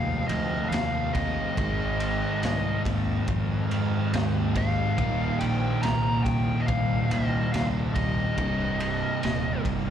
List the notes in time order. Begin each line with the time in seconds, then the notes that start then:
Already playing: D#2 F2 C3 F3 G#3 C4 F4 F5
0.28 D2 F2 C3 F3 D#5, ride
0.69 D#2 F2 C3 F5, ride
0.74 F3, snare
1.14 C3 F3 G#3 C4 F4 D#5, kick, ride
1.18 F2
1.56 G#1 G#2 D#3 G#3, kick, ride
1.60 C4 D#4 G#4
2.00 ride
2.43 C2, snare, ride
2.85 D#2, kick, ride
3.28 F2, kick, ride
3.70 G#2 D#3 G#3, ride
4.13 D#2 G#2 D#3 G#3, snare, ride
4.54 G#2 D#3 G#3 C4 D#4 G#4 F5, kick, ride
4.97 D#1 D#2 A#2 D#3 G3 A#3, kick, ride
5.01 D#4
5.39 A#1 G5, ride
5.83 C2 A#5, snare, ride
6.24 G5, kick, ride
6.61 D#5
6.67 C2 F5, kick, ride
7.10 C2 D#2 A#2 D#3 D#5, ride
7.52 C2 D#2 A#2 D#3 F5, snare, ride
7.95 A#2 D#3 G3 A#3 D#4 D#5, kick, ride
8.00 D#2
8.37 C1 C2 G2 C3 G3, kick, ride
8.41 D#4
8.80 ride
9.23 D#1, snare, ride
9.65 G1, kick, ride